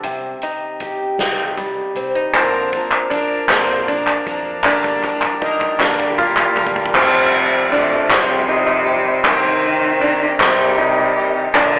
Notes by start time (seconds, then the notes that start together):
Already playing: G4
0.03 C2 C3, kick, closed hi-hat
0.42 D#4, closed hi-hat
0.80 G4, kick, closed hi-hat
1.18 C2 D#4, snare, closed hi-hat
1.57 G3, kick, closed hi-hat
1.95 C2 C4, closed hi-hat
2.15 D#4
2.34 A#1 A#2 D3 F3 A#3 C4 D4 A#4, kick, clap, closed hi-hat, tambourine
2.73 F3 A#3 D4 A#4, kick, closed hi-hat
2.91 clap
3.10 F3 A#3 D4, kick, closed hi-hat, tambourine
3.15 A#4
3.31 tambourine
3.49 A#1 D3 F3 A#3 C4 D4 A#4, kick, snare, clap, closed hi-hat, tambourine
3.53 A#2
3.88 F3 A#3 D4, kick, closed hi-hat, tambourine
3.92 A#4
4.07 clap
4.26 F2 A#3 D4 A#4, kick, closed hi-hat, tambourine
4.31 F3
4.47 tambourine
4.64 G1 G2 D3 G3 A#3 D4 A#4, kick, clap, tambourine
4.68 G3 A#3 D4 A#4
4.83 kick, clap
5.03 A#3 D4 A#4, kick, clap
5.07 G3
5.22 kick, clap
5.42 G3 A#3 D4 D#4, kick
5.46 A#4
5.61 kick, clap
5.80 G1 G2 A#2 D3 G3 A#3 D4 A#4, kick, snare, clap, tambourine
5.99 kick, tambourine
6.18 G3 A#3 D4 F4 A#4, kick
6.37 kick, clap, tambourine
6.56 D2 G3 A#3 D4 A#4, kick, clap, tambourine
6.67 kick
6.76 kick, tambourine
6.86 kick
6.95 F1 F2 C3 F3 G3 C4 F4 G4 C5, kick, clap, crash, tambourine
7.33 ride, tambourine
7.53 tambourine
7.71 F3 A3 C4 D4 F4 G4, ride
7.75 C3
7.91 tambourine
8.10 F2 C3 F3 G3 C4 F4 G4 C5, kick, snare, clap, ride, tambourine
8.49 D#4, ride
8.67 clap, tambourine
8.85 C4 F4 G4, ride
9.24 C2 C3 D#3 G3 A#3 C4 D#4 G4 A#4 C5, kick, clap, ride, tambourine
9.64 ride, tambourine
9.83 tambourine
10.00 G3 A#3 D4 D#4 G4, ride
10.22 tambourine
10.39 C2 C3 G3 A#3 C4 D#4 G4 A#4 D#5, kick, snare, clap, ride, tambourine
10.78 D#4, ride
10.98 tambourine
11.16 A#3 D#4 G4, ride
11.54 A#1 A#2 D3 F3 A#3 D4 A#4 D5, kick, clap, ride, tambourine